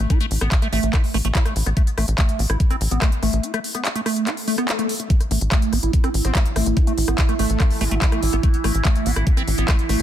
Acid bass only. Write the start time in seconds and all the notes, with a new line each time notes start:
Already playing: A3
0.10 E4
0.21 A3
0.41 B3
0.62 A3
0.73 A3
0.93 E4
1.14 A3
1.25 A3
1.35 E4
1.46 A3
1.66 B3
1.77 A3
1.98 A3
2.18 A3
2.39 B3
2.50 E4
2.71 C4
2.91 B3
3.02 A3
3.23 A3
3.43 E4
3.54 A3
3.75 B3
3.96 A3
4.06 A3
4.27 E4
4.48 A3
4.58 B3
4.79 A3
5.00 A3
5.10 A3
5.31 A3
5.52 A3
5.73 B3
5.83 E4
6.04 C4
6.25 B3
6.35 A3
6.56 A3
6.77 E4
6.87 A3
7.08 B3
7.29 A3
7.39 A3
7.60 E4
7.81 A3
7.91 A3
8.02 E4
8.12 A3
8.33 B3
8.43 A3
8.64 A3
8.85 A3
9.06 B3
9.16 E4
9.37 C4
9.58 B3
9.68 A3
9.89 A3